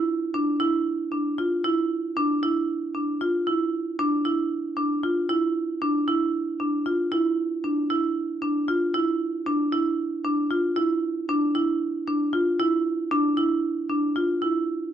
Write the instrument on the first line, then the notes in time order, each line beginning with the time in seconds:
marimba
Already playing: E4
0.34 D4
0.60 E4
1.12 D4
1.38 F4
1.64 E4
2.17 D4
2.43 E4
2.95 D4
3.21 F4
3.47 E4
3.99 D4
4.25 E4
4.77 D4
5.03 F4
5.29 E4
5.82 D4
6.08 E4
6.60 D4
6.86 F4
7.12 E4
7.64 D4
7.90 E4
8.42 D4
8.68 F4
8.94 E4
9.46 D4
9.72 E4
10.24 D4
10.51 F4
10.76 E4
11.29 D4
11.55 E4
12.08 D4
12.33 F4
12.60 E4
13.11 D4
13.37 E4
13.89 D4
14.16 F4
14.42 E4